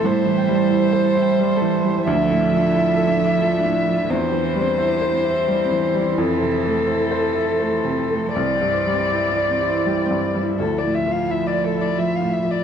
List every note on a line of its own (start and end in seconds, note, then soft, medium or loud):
0.00 2.07 G3 medium
0.00 1.39 C4 medium
0.00 1.74 E4 soft
0.00 0.87 C5 medium
0.00 2.08 C5 soft
0.00 0.20 E5 medium
0.00 2.08 E5 soft
0.04 2.04 A2 medium
0.04 2.08 G3 medium
0.04 0.53 A4 medium
0.04 2.06 C5 medium
0.21 0.70 E5 medium
0.26 0.62 E3 soft
0.37 1.21 G5 medium
0.48 0.84 G3 medium
0.55 1.03 A4 medium
0.70 1.07 E4 soft
0.70 1.38 E5 medium
0.88 1.89 C5 medium
0.93 1.30 C5 medium
1.05 1.55 A4 medium
1.15 1.52 E4 soft
1.22 2.10 G5 medium
1.39 1.76 G3 medium
1.39 5.29 E5 medium
1.56 2.22 A4 medium
1.62 1.98 E3 soft
1.84 2.07 G3 soft
1.90 2.10 C5 medium
2.06 4.07 D2 medium
2.06 4.07 F3 medium
2.06 4.11 F3 medium
2.06 2.56 D4 medium
2.06 4.11 A4 medium
2.06 4.12 E5 medium
2.06 4.08 E5 medium
2.24 2.73 A4 medium
2.30 2.66 A2 medium
2.40 3.23 D5 medium
2.52 2.89 F3 medium
2.57 3.06 D4 medium
2.74 3.11 E4 soft
2.74 3.40 A4 medium
2.91 3.92 F4 medium
2.97 3.33 A4 medium
3.07 3.57 D4 medium
3.20 3.56 E4 soft
3.24 4.13 D5 medium
3.41 3.79 F3 soft
3.41 4.13 A4 medium
3.58 4.13 D4 medium
3.65 4.01 A2 soft
3.87 4.10 F3 soft
3.93 4.13 F4 medium
4.10 6.13 E2 medium
4.10 8.30 E3 medium
4.10 10.59 E3 medium
4.10 4.60 C4 medium
4.10 6.18 G4 medium
4.10 6.19 C5 medium
4.10 8.34 C5 medium
4.28 4.78 G4 soft
4.33 4.70 E3 soft
4.44 5.29 C5 medium
4.55 4.93 G3 soft
4.61 5.12 C4 medium
4.78 5.15 E4 soft
4.78 5.46 G4 medium
4.96 5.98 E4 medium
5.01 5.38 C5 medium
5.13 5.63 C4 medium
5.25 5.62 E4 soft
5.30 6.32 C5 soft
5.47 5.85 G3 soft
5.47 6.20 G4 soft
5.65 8.33 C4 medium
5.72 6.09 E3 soft
5.94 6.17 G3 soft
5.99 9.30 E4 soft
6.18 8.31 F2 medium
6.18 8.33 A4 medium
6.18 8.35 A4 medium
6.33 6.86 C5 soft
6.41 6.78 C3 soft
6.51 7.39 E5 soft
6.65 7.02 A3 soft
6.87 7.25 E4 soft
6.87 7.57 C5 soft
7.05 8.14 A4 soft
7.11 7.49 C5 soft
7.35 7.74 E4 soft
7.40 11.30 E5 soft
7.58 7.99 A3 soft
7.58 8.72 C5 soft
7.84 8.24 C3 soft
8.10 8.35 A3 soft
8.15 8.37 A4 soft
8.34 10.56 C2 medium
8.34 10.35 E3 medium
8.34 8.92 C4 medium
8.34 10.60 G4 soft
8.34 10.35 D5 medium
8.34 10.60 D5 soft
8.55 9.11 G4 soft
8.61 9.01 G2 soft
8.73 9.68 C5 soft
8.87 9.27 G3 soft
8.93 9.49 C4 medium
9.12 9.52 E4 soft
9.12 9.85 G4 soft
9.31 10.42 E4 soft
9.37 9.76 D5 soft
9.50 10.04 C4 medium
9.62 10.01 E4 soft
9.69 10.63 C5 soft
9.86 10.26 G3 soft
9.86 10.62 G4 soft
10.06 10.63 C4 medium
10.11 10.50 G2 soft
10.35 10.59 G3 soft
10.43 12.64 E4 soft
10.59 12.64 D2 soft
10.59 12.64 F3 soft
10.59 12.64 A3 soft
10.59 10.79 A4 soft
10.59 12.64 E5 soft
10.78 10.96 D5 soft
10.83 11.20 A2 soft
10.95 11.13 E5 soft
11.06 11.43 F3 soft
11.12 11.32 F5 soft
11.29 11.66 E4 soft
11.29 11.48 E5 soft
11.47 11.66 D5 soft
11.53 11.89 D5 soft
11.64 11.83 A4 soft
11.76 12.13 E4 soft
11.82 12.01 D5 soft
11.98 12.36 F3 soft
11.98 12.17 E5 soft
12.16 12.35 F5 soft
12.21 12.58 A2 soft
12.33 12.53 E5 soft
12.44 12.64 F3 soft
12.51 12.64 D5 soft